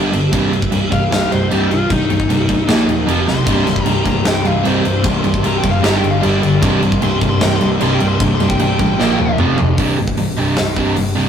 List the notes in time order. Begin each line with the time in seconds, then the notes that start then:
Already playing: G1 G2 D3 G3
0.13 G1 G2 D3, crash
0.33 C1 C2 G2 C3, kick, crash
0.52 C2 G2, crash
0.62 kick
0.72 C1 C2 G2, crash
0.92 C1 C2 G2 F5, kick, crash
1.12 C1 C2 G2, snare, crash
1.31 C1 C2 G2 C5, crash
1.51 C1 C2 G2 C3 G4, crash
1.70 C1 C2 G2 F4, crash
1.90 C1 C2 G2 D#4, kick, crash
2.09 C1 C2 G2, crash
2.20 kick
2.29 C1 C2 G2, crash
2.48 C1 C2 G2, kick, crash
2.68 A#1 A#2 F3 A#3, snare, crash
2.88 D#1 A#2 F3, crash
3.06 F1 F2 C3 F3, crash
3.26 B1 F2 C3 C6, snare
3.44 C1 C2 G2 C3 C4 G4 D5, kick, crash
3.65 C2 G2, snare, crash
3.76 kick
3.84 C1 C2 G2 A#5, crash
4.05 C1 C2 G2 A#5, kick, crash
4.24 C1 C2 G2 G5, snare, crash
4.45 C1 C2 G2 F5, crash
4.63 C1 C2 G2 C3 C5, crash
4.84 C1 C2 G2, crash
5.03 C1 C2 G2 C3, kick, crash
5.22 C1 C2 G2, crash
5.34 kick
5.43 C1 C2 G2 A#5, crash
5.58 G5
5.62 F#1 C2 G2, kick, crash
5.71 F5
5.82 G1 G2 D3 G3 D4 A#5, snare, crash
5.97 G5
6.02 G1 G2 D3, crash
6.11 F5
6.21 G1 G2 D3 G3 D4 D5, crash
6.41 G1 G2 D3, crash
6.61 C1 C2 G2 C3 C4 D5, kick, crash
6.82 C2 G2, crash
6.92 kick
7.02 C1 C2 G2 C6, crash
7.21 C1 C2 G2, kick, crash
7.29 C6
7.40 C1 C2 G2 G5, snare, crash
7.56 C6
7.60 C1 C2 G2, crash
7.79 C1 C2 G2 C3 C6, crash
7.94 G5
8.00 C1 C2 G2, crash
8.08 C6
8.20 C1 C2 G2 C3, kick, crash
8.35 C6
8.40 C1 C2 G2, crash
8.49 G5, kick
8.59 C1 C2 G2 G5, crash
8.79 A1 C2 G2, kick, crash
8.98 A#1 A#2 F3 A#3 F4 C5, snare
9.19 D#1 A#2 F3, high tom
9.38 F1 F2 C3 F3 C4 G4, mid tom
9.58 F1 F2 C3, floor tom
9.77 C1 C2 G2 C3, kick, open hi-hat
9.97 C1 C2 G2
10.08 kick
10.17 C1 C2 G2, open hi-hat
10.37 C1 C2 G2 C3
10.57 C1 C2 G2, snare, open hi-hat
10.76 C2 G2 C3, kick
10.96 G1 C2 G2, open hi-hat
11.15 C1 C2 G2 C3